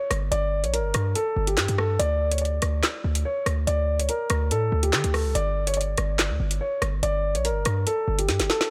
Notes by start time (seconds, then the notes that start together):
0.11 G1, cross-stick, closed hi-hat
0.32 G1 D5, closed hi-hat
0.64 A#1 C#5, closed hi-hat
0.73 A#4, closed hi-hat
0.79 G1
0.94 G2, cross-stick, closed hi-hat
1.15 A4, closed hi-hat
1.36 G1
1.47 G4, closed hi-hat
1.57 G2, snare, clap, closed hi-hat
1.68 G2, closed hi-hat
1.78 A4, cross-stick
1.99 D2 D5, closed hi-hat
2.31 C#5, closed hi-hat
2.38 D5, closed hi-hat
2.45 closed hi-hat
2.62 D2, cross-stick, closed hi-hat
2.83 snare, clap, closed hi-hat
3.04 D2
3.15 closed hi-hat
3.25 C#5
3.46 D2, cross-stick, closed hi-hat
3.67 D2 D5, closed hi-hat
3.99 C#2 C#5, closed hi-hat
4.09 A#4, closed hi-hat
4.30 D2, cross-stick, closed hi-hat
4.51 A2 A4, closed hi-hat
4.72 D2
4.83 G4, closed hi-hat
4.93 D3, snare, clap, closed hi-hat
5.04 D2, closed hi-hat
5.14 A4, cross-stick, open hi-hat
5.25 C#2
5.35 G1 D5, closed hi-hat
5.67 C#5, closed hi-hat
5.74 D5, closed hi-hat
5.81 closed hi-hat
5.97 G1, cross-stick, closed hi-hat
6.19 snare, clap, closed hi-hat
6.30 D2
6.40 G1
6.51 closed hi-hat
6.61 C#5
6.82 G1, cross-stick, closed hi-hat
7.03 G1 D5, closed hi-hat
7.35 A#1 C#5, closed hi-hat
7.45 A#4, closed hi-hat
7.50 G1
7.65 G2, cross-stick, closed hi-hat
7.87 A4, closed hi-hat
8.08 G1
8.19 G4, closed hi-hat
8.29 G2, snare, closed hi-hat
8.40 G1, snare, closed hi-hat
8.50 A4, snare
8.61 snare